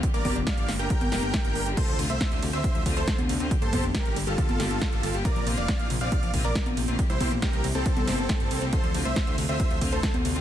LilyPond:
<<
  \new Staff \with { instrumentName = "Supersaw synth" } { \time 4/4 \key d \minor \tempo 4 = 138 r16 <bes' d''>8 r16 <d'' f''>8 r16 <bes' g''>2 r16 | <a' c''>8 r16 <c'' e''>8. r16 <c'' e''>8. r16 <a' c''>8 r8. | r16 <a' c''>8 r16 <g' bes'>8 r16 <f' a'>2 r16 | <bes' d''>8 r16 <d'' f''>8. r16 <d'' f''>8. r16 <bes' d''>8 r8. |
r16 <e' c''>8 r16 <g' bes'>8 r16 <c' a'>2 r16 | <a' c''>8 r16 <c'' e''>8. r16 <c'' e''>8. r16 <a' c''>8 r8. | }
  \new Staff \with { instrumentName = "String section" } { \time 4/4 \key d \minor <d g bes g'>8 <d g bes g'>8 <d g bes g'>16 <d g bes g'>8 <d g bes g'>16 <d g bes g'>8 <d g bes g'>8 <d g bes g'>16 <d g bes g'>8 <d g bes g'>16 | <d a c' f'>8 <d a c' f'>8 <d a c' f'>16 <d a c' f'>8 <d a c' f'>16 <d a c' f'>8 <d a c' f'>8 <d a c' f'>16 <d a c' f'>8 <d a c' f'>16 | <d g bes g'>8 <d g bes g'>8 <d g bes g'>16 <d g bes g'>8 <d g bes g'>16 <d g bes g'>8 <d g bes g'>8 <d g bes g'>16 <d g bes g'>8 <d g bes g'>16 | <d bes c' f'>8 <d bes c' f'>8 <d bes c' f'>16 <d bes c' f'>8 <d bes c' f'>16 <d bes c' f'>8 <d bes c' f'>8 <d bes c' f'>16 <d bes c' f'>8 <d bes c' f'>16 |
<e bes c' g'>8 <e bes c' g'>8 <e bes c' g'>16 <e bes c' g'>8 <e bes c' g'>16 <e bes c' g'>8 <e bes c' g'>8 <e bes c' g'>16 <e bes c' g'>8 <e bes c' g'>16 | <d a c' f'>8 <d a c' f'>8 <d a c' f'>16 <d a c' f'>8 <d a c' f'>16 <d a c' f'>8 <d a c' f'>8 <d a c' f'>16 <d a c' f'>8 <d a c' f'>16 | }
  \new Staff \with { instrumentName = "Synth pluck" } { \clef bass \time 4/4 \key d \minor d16 bes16 d16 d'16 r8 d16 g'16 d16 bes16 d16 d'16 r8 d16 g'16 | c16 f16 c16 a16 r8 c16 c'16 c16 f16 c16 a16 r8 c16 c'16 | d16 bes16 d16 d'16 r8 d16 g'16 d16 bes16 d16 d'16 r8 d16 g'16 | c16 f16 c16 bes16 r8 c16 c'16 c16 f16 c16 bes16 r8 c16 c'16 |
c16 g16 c16 bes16 r8 c16 c'16 c16 g16 c16 bes16 r8 c16 c'16 | c16 f16 c16 a16 r8 c16 c'16 c16 f16 c16 a16 r8 c16 c'16 | }
  \new Staff \with { instrumentName = "Analog synth bass" } { \clef bass \time 4/4 \key d \minor r16 g,,16 g,,16 f,,16 r16 g,,16 g,,16 g,,16 r16 g,,16 f,,16 g,,16 r16 g,,16 g,,16 g,,16 | r16 d,16 d,16 c,16 r16 d,16 d,16 d,16 r16 d,16 d,16 d,16 r16 d,16 d,16 d,16 | r16 g,,16 g,,16 f,,16 r16 g,,16 g,,16 g,,16 r16 g,,16 g,,16 g,,16 r16 g,,16 g,,16 g,,16 | r16 bes,,16 bes,,16 f,,16 r16 bes,,16 bes,,16 bes,,16 r16 bes,,16 bes,,16 bes,,16 r16 bes,,16 bes,,16 bes,,16 |
r16 c,16 c,16 bes,,16 r16 c,16 c,16 c,16 r16 c,16 g,,16 g,,16 r16 g,,16 c,16 c,16 | r16 d,16 d,16 c,16 r16 d,16 d,16 d,16 r16 d,16 d,16 d,16 r16 d,16 d,16 d,16 | }
  \new DrumStaff \with { instrumentName = "Drums" } \drummode { \time 4/4 <hh bd>16 hh16 <cgho hho bd>16 hh16 <hh bd sn>16 hh16 <hho sn>16 hh16 <hh bd>16 <cgho hh>16 <cgho hho sn>16 hh16 <hh bd sn>16 hh16 hho16 hh16 | <cymc hh bd cymr>16 hh16 <hho cymr>16 hh16 <hh bd cymr sn>16 hh16 <hho cymr>16 hh16 <hh bd cymr>16 hh16 <hho bd cymr>16 hh16 <hh bd cymr sn>16 <cgho hh>16 <hho cymr>16 hh16 | <hh bd cymr>16 hh16 <cgho hho bd cymr>16 hh16 <hh bd cymr sn>16 hh16 <hho cymr>16 hh16 <hh bd cymr>16 <cgho hh>16 <cgho hho cymr sn>16 hh16 <hh bd cymr sn>16 hh16 <hho cymr>16 hh16 | <hh bd cymr>16 hh16 <hho cymr>16 hh16 <hh bd cymr sn>16 hh16 <hho cymr>16 hh16 <hh bd cymr>16 hh16 <hho bd cymr>16 hh16 <hh bd cymr sn>16 <cgho hh>16 <hho cymr>16 hh16 |
<hh bd cymr>16 hh16 <cgho hho bd cymr>16 hh16 <hh bd cymr sn>16 hh16 <hho cymr>16 hh16 <hh bd cymr>16 <cgho hh>16 <cgho hho cymr sn>16 hh16 <hh bd cymr sn>16 hh16 <hho cymr>16 hh16 | <hh bd cymr>16 hh16 <hho cymr>16 hh16 <hh bd cymr sn>16 hh16 <hho cymr>16 hh16 <hh bd cymr>16 hh16 <hho bd cymr>16 hh16 <hh bd cymr sn>16 <cgho hh>16 <hho cymr>16 hh16 | }
>>